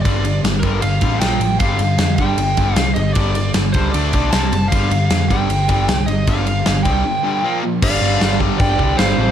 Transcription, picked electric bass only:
\new Staff \with { instrumentName = "Picked electric bass" } { \clef bass \time 4/4 \key g \minor \tempo 4 = 154 g,,4 g,,8 g,,8 g,,8 a,,8 bes,,8 a,,8 | g,,8 g,8 f,8 g,,8 g,,8 g,,8 c,8 g,,8 | g,,4 g,,8 cis,8 d,8 b,,8 c,8 fis,,8 | g,,8 g,8 f,8 g,,8 g,,8 g,,8 c,8 g,,8 |
g,,4 g,,8 c,8 r2 | g,,8 g,,8 g,,4 g,,8 c,8 g,,8 a,,8 | }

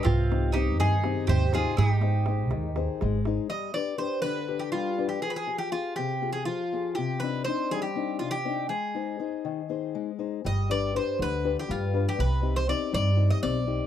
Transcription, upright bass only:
\new Staff \with { instrumentName = "Upright bass" } { \clef bass \time 7/8 \tempo 4 = 121 c,4. g,4 ees,4 | aes,,4. ees,4 aes,,4 | r2. r8 | r2. r8 |
r2. r8 | r2. r8 | g,,4. d,4 g,4 | c,4. g,4 b,,4 | }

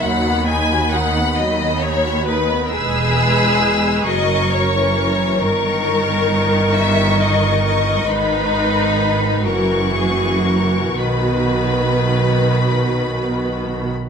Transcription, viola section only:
\new Staff \with { instrumentName = "Viola section" } { \time 6/8 \key b \major \tempo 4. = 44 << { fis16 b16 dis'16 fis'16 dis'16 b16 fis16 b16 dis'16 fis'16 dis'16 b16 | b'4. ais'4. | ais'2. | b'4. fis'4. |
fis'2~ fis'8. r16 | } \\ { dis2. | gis4. fis8. e8. | dis2. | dis4. e4. |
dis2~ dis8. r16 | } >> }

